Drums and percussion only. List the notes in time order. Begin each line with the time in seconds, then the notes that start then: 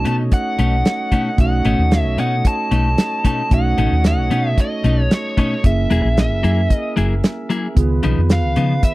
0.05 closed hi-hat
0.32 kick, closed hi-hat
0.59 closed hi-hat
0.85 snare, closed hi-hat
1.12 kick, closed hi-hat
1.38 kick, closed hi-hat
1.65 closed hi-hat
1.91 snare, closed hi-hat
2.18 closed hi-hat
2.45 kick, closed hi-hat
2.71 closed hi-hat
2.98 snare, closed hi-hat
3.25 kick, closed hi-hat
3.51 kick, closed hi-hat
3.78 closed hi-hat
4.04 snare, closed hi-hat
4.31 closed hi-hat
4.58 kick, closed hi-hat
4.84 closed hi-hat
5.11 snare, closed hi-hat
5.37 kick, closed hi-hat
5.64 kick, closed hi-hat
5.90 closed hi-hat
6.17 snare, closed hi-hat
6.44 closed hi-hat
6.70 kick, closed hi-hat
6.97 closed hi-hat
7.24 snare, closed hi-hat
7.50 closed hi-hat
7.77 kick, closed hi-hat
8.03 closed hi-hat
8.30 snare, closed hi-hat
8.56 closed hi-hat
8.83 kick, closed hi-hat